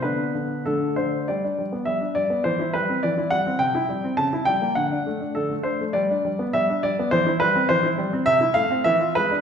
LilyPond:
<<
  \new Staff \with { instrumentName = "Grand piano" } { \time 2/4 \key g \major \tempo 4 = 102 << { b'4 a'8 c''8 | d''4 e''8 d''8 | c''8 b'8 d''8 fis''8 | g''4 a''8 g''8 |
fis''4 a'8 c''8 | d''4 e''8 d''8 | c''8 b'8 c''8 r8 | \key a \minor e''8 f''8 e''8 b'8 | } \\ { <b d'>4 <a d'>4 | r2 | r2 | r2 |
r2 | r2 | r2 | r2 | } >> }
  \new Staff \with { instrumentName = "Grand piano" } { \time 2/4 \key g \major d8 d8 d8 d8 | g16 d'16 g16 b16 g16 d'16 g16 b16 | e16 e'16 g16 c'16 e16 e'16 g16 c'16 | c16 e'16 g16 c'16 cis16 e'16 g16 ais16 |
d16 d'16 a16 d'16 d16 a16 d'16 a16 | g16 d'16 g16 b16 g16 d'16 g16 b16 | e16 e'16 g16 c'16 e16 e'16 g16 c'16 | \key a \minor c16 e'16 a16 c'16 e16 f'16 gis16 d'16 | }
>>